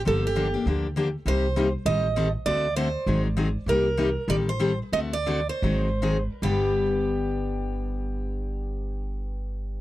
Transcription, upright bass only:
X:1
M:4/4
L:1/8
Q:"Swing" 1/4=194
K:Cdor
V:1 name="Upright bass" clef=bass
G,,,4 D,,4 | C,,4 A,,,4 | D,,4 _A,,,4 | C,,4 A,,,4 |
D,,4 _A,,,4 | G,,,8- | G,,,8 |]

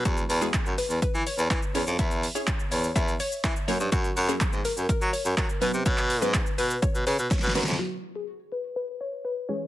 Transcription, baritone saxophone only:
X:1
M:4/4
L:1/16
Q:1/4=124
K:E
V:1 name="Baritone saxophone" clef=bass
E,,2 E,,2 z F,, z E,, E, E, z E,, E, z E,, =F,, | E,,3 z3 E,,2 E,,2 z2 E, z F,, =G,, | F,,2 F,,2 z G,, z F,, F, F, z F,, F, z B,, =C, | B,,3 G,,2 z B,,2 z B,, C, B,, z B,, F,, =F,, |
z16 |]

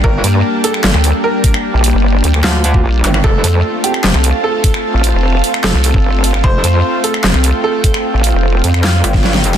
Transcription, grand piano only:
X:1
M:4/4
L:1/8
Q:1/4=150
K:Fmix
V:1 name="Grand piano"
B3 A3 B2- | B z3 F4 | A3 G3 A2- | A z3 A4 |
c3 A3 A2- | A z3 F4 |]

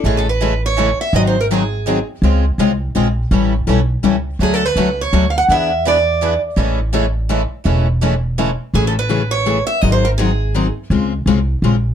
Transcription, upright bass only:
X:1
M:3/4
L:1/8
Q:"Swing" 1/4=166
K:A
V:1 name="Upright bass" clef=bass
A,,,6 | G,,,6 | C,,2 ^B,,,2 _B,,,2 | A,,,2 B,,,2 C,,2 |
D,,2 C,,2 D,,2 | E,,6 | A,,,6 | E,,,6 |
A,,,6 | G,,,6 | C,,2 ^B,,,2 _B,,,2 |]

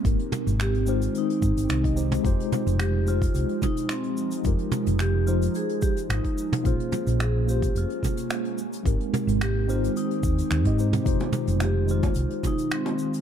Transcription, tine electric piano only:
X:1
M:4/4
L:1/16
Q:"Swing 16ths" 1/4=109
K:Fm
V:1 name="Tine electric piano"
[A,CEGB]6 [A,CEGc] z6 [A,CEGe] [A,CEGc]2 | [A,EFGc]6 [A,EFGc]8- [A,EFGc]2 | [A,EFGB]6 [A,EFGc] z8 z | [B,DFAc]6 [B,DFAc]8 z2 |
[A,CEGB]6 [A,CEGc] z6 [A,CEGe] [A,CEGc]2 | [A,EFGc]6 [A,EFGc]8- [A,EFGc]2 |]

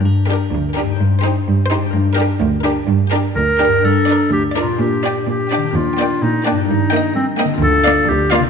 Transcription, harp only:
X:1
M:2/4
L:1/8
Q:1/4=127
K:Gm
V:1 name="Harp"
[G,,DGB]4 | [G,,EGc]4 | [G,,DGB]4- | [G,,DGB]4 |
[G,,DGB]4 | [B,,DGB]4 | [E,DGB]4 | [G,,EGB]4 |
[D,DFB]4 |]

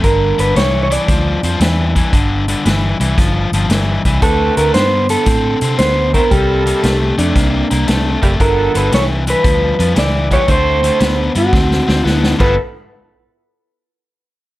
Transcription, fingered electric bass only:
X:1
M:4/4
L:1/8
Q:"Swing" 1/4=115
K:Gmix
V:1 name="Fingered electric bass" clef=bass
G,,, G,,, C,,2 D,, F,, E,,2 | G,,,2 G,,, C,, G,,, G,,, G,,, C,, | D,, D,, G,,2 A,, C, D,,2 | C,,2 C,, F,, C,, C,, C,, ^F,,, |
G,,, G,,, C,,2 D,, F,, ^C,,2 | D,,2 D,, G,, D,, D,, D,, G,,, | z8 |]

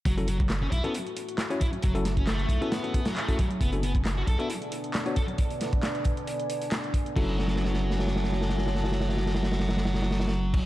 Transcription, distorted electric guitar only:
X:1
M:4/4
L:1/16
Q:"Swing 16ths" 1/4=135
K:F#m
V:1 name="Distorted electric guitar"
F, z F, z2 C E B, z6 E z | F, z2 C A,3 B,4 F, A,2 F, z | B, z B, z2 F A E z6 A z | z16 |
F,16- | F,12- F,3 z |]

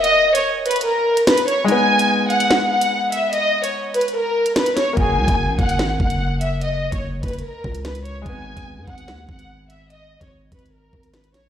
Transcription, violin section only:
X:1
M:4/4
L:1/16
Q:1/4=146
K:G#m
V:1 name="Violin section"
d3 c z2 B2 A4 B2 c2 | g6 f4 f4 e2 | d3 c z2 B2 A4 B2 c2 | g6 f4 f4 e2 |
d3 c z2 B2 A4 B2 c2 | g6 f4 f4 e2 | d3 c z2 B2 A4 B2 c2 |]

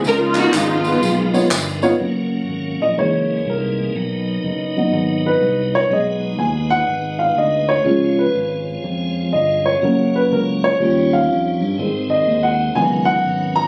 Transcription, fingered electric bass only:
X:1
M:4/4
L:1/8
Q:"Swing" 1/4=123
K:F#
V:1 name="Fingered electric bass" clef=bass
C,,2 G,,,2 B,,,2 =G,,,2 | F,,,2 G,,, A,,, F,,,2 ^B,,,2 | B,,,2 F,,,2 G,,,2 ^B,,,2 | B,,,2 D,,2 G,,,2 =D,,2 |
C,,2 G,,,2 E,,2 =G,,,2 | F,,,2 C,,2 D,,2 E,, =G,, | G,,,2 D,,2 C,,2 G,,,2 |]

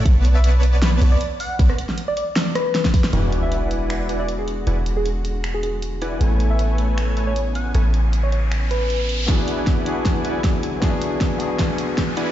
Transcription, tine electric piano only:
X:1
M:4/4
L:1/8
Q:"Swing 16ths" 1/4=156
K:Emix
V:1 name="Tine electric piano"
z8 | z8 | [G,B,DF]8- | [G,B,DF]8 |
[B,CEg]8- | [B,CEg]8 | [B,DFG]3 [B,DFG]4- [B,DFG] | [B,DFG]3 [B,DFG]4- [B,DFG] |]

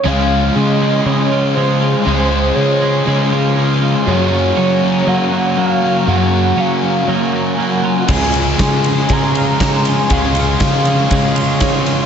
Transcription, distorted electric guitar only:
X:1
M:4/4
L:1/8
Q:1/4=119
K:Db
V:1 name="Distorted electric guitar" clef=bass
[D,A,D] [A,D] [D,A,D] [A,D] [D,A,D] [A,D] [D,A,D] [A,D] | [D,A,D] [A,D] [D,A,D] [A,D] [D,A,D] [A,D] [D,A,D] [A,D] | [G,,D,G,] [D,G,] [G,,D,G,] [D,G,] [G,,D,G,] [D,G,] [G,,D,G,] [D,G,] | [G,,D,G,] [D,G,] [G,,D,G,] [D,G,] [G,,D,G,] [D,G,] [G,,D,G,] [D,G,] |
[D,A,D] [A,D] [D,A,D] [A,D] [D,A,D] [A,D] [D,A,D] [A,D] | [D,A,D] [A,D] [D,A,D] [A,D] [D,A,D] [A,D] [D,A,D] [A,D] |]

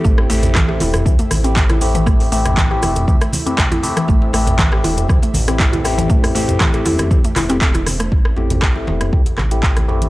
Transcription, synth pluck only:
X:1
M:4/4
L:1/16
Q:"Swing 16ths" 1/4=119
K:Am
V:1 name="Synth pluck"
A, z A, z E, G E z E, A, z C z E z E, | A, z A, z E, G E z E, A, z C z E z E, | A, z A, z E, G E z E, A, z C z E z E, | A, z A, z E, G E z E, A, E C z E z A, |
z16 |]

